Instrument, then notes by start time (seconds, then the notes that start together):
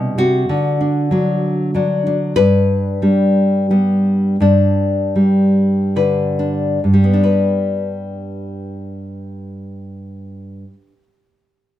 nylon-string guitar
Already playing: B2 C3 G3 D4 E4 G4
0.18 C3 F#4
0.49 D3
0.81 D4
1.11 F#3 D4
1.74 F#3 D4
2.07 D4
2.36 G2 B4
3.02 G3 D4
3.70 G3 B3
4.40 G2 D4
5.16 G3
5.96 D3 B4
6.39 D4
6.84 G2
6.94 G3
7.04 B3
7.14 D4
7.24 B4